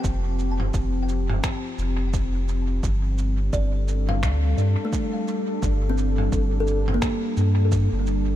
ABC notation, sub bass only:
X:1
M:4/4
L:1/16
Q:"Swing 16ths" 1/4=86
K:Gm
V:1 name="Sub bass" clef=bass
F,,,4 F,,,4 z2 F,,,6 | G,,,4 G,,,4 D,,2 G,, z4 z | G,,,4 G,,,4 z2 G,,3 G,,,3 |]